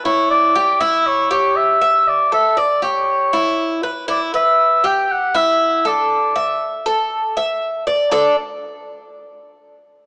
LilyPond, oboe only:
\new Staff \with { instrumentName = "Oboe" } { \time 4/4 \key e \dorian \tempo 4 = 119 cis''8 d''4 e''8 cis''8 cis''8 e''4 | d''8 e''8 d''8 cis''2 r8 | d''8 e''4 g''8 fis''8 e''4 d''8~ | d''4. r2 r8 |
r1 | }